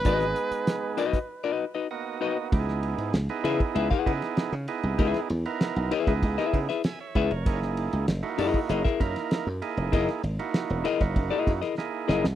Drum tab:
RD |----------------|x-xxxxxxx-xxxxxx|xxxxxxxxxxxxx-xx|x-xxxxxxxxxxx-xx|
HH |xxxxx-xx--------|----------------|----------------|------o-p-------|
SD |-o--o--o--------|-o--o----o-oo---|-o--o--o-o-oo---|-o--o----o-oo---|
BD |o------o--------|o------o-oo-----|o------oo-o---o-|o------o-oo-----|

RD |xxxxxxxxx-xx----|
HH |----------------|
SD |-o--o--o---oo-oo|
BD |o------oo-o-----|